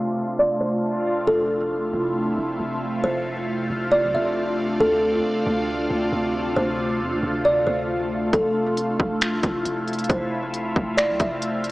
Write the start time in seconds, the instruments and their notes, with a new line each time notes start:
Already playing: ambient pad C3 A3 D4 F4, kalimba C5
0.39 kalimba D5
0.61 kalimba C5
1.27 808-style bass F1, ambient pad C3 A3 E4 F4, kalimba A4
1.93 808-style bass F1
2.38 808-style bass F1
2.60 808-style bass F1
3.04 808-style bass F1, ambient pad D4, kalimba C5
3.70 808-style bass F1
3.92 kalimba D5
4.03 808-style bass C2
4.14 808-style bass F1, kalimba E5
4.80 808-style bass D2, ambient pad A3, kalimba A4
5.46 808-style bass D2
5.90 808-style bass D2
6.13 808-style bass D2
6.56 808-style bass D2, kalimba C5
7.01 808-style bass F2
7.12 808-style bass D2
7.23 808-style bass D2
7.45 kalimba D5
7.67 808-style bass D2, kalimba C5
8.33 808-style bass F1, ambient pad C3 E4, kalimba A4, kick, closed hi-hat
8.77 closed hi-hat
9.00 808-style bass F1, kick
9.21 finger snap, closed hi-hat
9.43 808-style bass F1, kick, closed hi-hat
9.65 808-style bass F1, closed hi-hat
9.88 closed hi-hat
9.93 closed hi-hat
9.99 closed hi-hat
10.04 closed hi-hat
10.09 808-style bass F1, kalimba C5, kick, closed hi-hat
10.54 closed hi-hat
10.76 808-style bass F1, kick
10.97 kalimba D5, finger snap, closed hi-hat
11.09 808-style bass C2
11.20 808-style bass F1, kalimba E5, kick, closed hi-hat
11.42 closed hi-hat
11.64 closed hi-hat